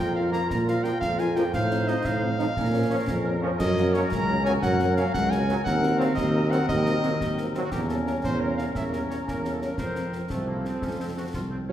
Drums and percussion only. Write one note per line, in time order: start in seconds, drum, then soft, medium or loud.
0.33 snare medium
0.51 concert bass drum medium
0.51 snare medium
0.68 snare medium
0.84 snare medium
1.02 concert bass drum medium
1.02 snare medium
1.19 snare medium
1.36 snare medium
1.53 concert bass drum medium
1.53 snare medium
1.71 snare medium
1.88 snare medium
2.05 concert bass drum medium
2.05 snare medium
2.39 snare medium
2.57 concert bass drum medium
2.57 snare medium
3.08 concert bass drum medium
3.08 snare medium
3.60 concert bass drum medium
3.60 snare medium
3.60 crash medium
3.77 snare medium
3.94 snare medium
4.12 concert bass drum medium
4.12 snare medium
4.46 snare medium
4.62 concert bass drum medium
4.62 snare medium
4.79 snare medium
4.97 snare medium
5.14 concert bass drum medium
5.14 snare medium
5.32 snare medium
5.49 snare medium
5.66 concert bass drum medium
5.66 snare medium
5.83 snare medium
6.01 snare medium
6.17 concert bass drum medium
6.17 snare medium
6.52 snare medium
6.69 concert bass drum medium
6.69 snare medium
6.86 snare medium
7.03 snare medium
7.21 concert bass drum medium
7.21 snare medium
7.38 snare medium
7.55 snare medium
7.72 concert bass drum medium
7.72 snare medium
7.72 crash soft
7.89 snare medium
8.07 snare medium
8.24 concert bass drum medium
8.24 snare medium
8.59 snare medium
8.75 concert bass drum medium
8.75 snare medium
8.93 snare medium
9.11 snare medium
9.28 concert bass drum medium
9.28 snare medium
9.45 snare medium
9.62 snare medium
9.78 concert bass drum medium
9.78 snare medium
9.96 snare medium
10.13 snare soft
10.30 concert bass drum medium
10.30 snare medium
10.65 snare medium
10.82 concert bass drum medium
10.82 snare medium
11.34 concert bass drum medium
11.34 snare medium